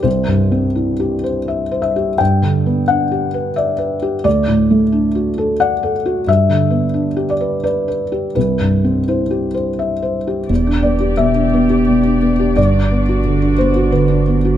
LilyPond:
<<
  \new Staff \with { instrumentName = "Felt piano" } { \time 3/4 \key g \major \tempo 4 = 87 << { c''2 r8 e''8 | g''4 fis''4 e''4 | d''2 fis''8 r8 | e''4. d''8 b'4 |
b'4 c''4. r8 | r8 d''8 e''2 | d''4. c''8 b'4 | } \\ { \tuplet 3/2 { c,8 g,8 c'8 e'8 g'8 c''8 e''8 c''8 g'8 } | \tuplet 3/2 { g,8 d8 b8 d'8 g'8 b'8 d''8 b'8 g'8 } | \tuplet 3/2 { d,8 a,8 a8 d'8 fis'8 a'8 d''8 a'8 fis'8 } | \tuplet 3/2 { g,8 d8 b8 d'8 g'8 b'8 d''8 b'8 g'8 } |
\tuplet 3/2 { c,8 g,8 c'8 e'8 g'8 c''8 e''8 c''8 g'8 } | e,16 d'16 b16 g'16 b,16 d'16 b16 g'16 b,16 d'16 b16 g'16 | g,16 d'16 b16 fis'16 d16 d'16 b16 fis'16 d16 d'16 b16 fis'16 | } >> }
  \new Staff \with { instrumentName = "String section" } { \time 3/4 \key g \major << { r2. | r2. | r2. | r2. |
r2. | <d' d''>2.~ | <d' d''>2. | } \\ { r2. | r2. | r2. | r2. |
r2. | g'2. | fis'2. | } >> }
  \new Staff \with { instrumentName = "Sub bass" } { \clef bass \time 3/4 \key g \major r2. | r2. | r2. | r2. |
r2. | e,,2. | g,,2. | }
>>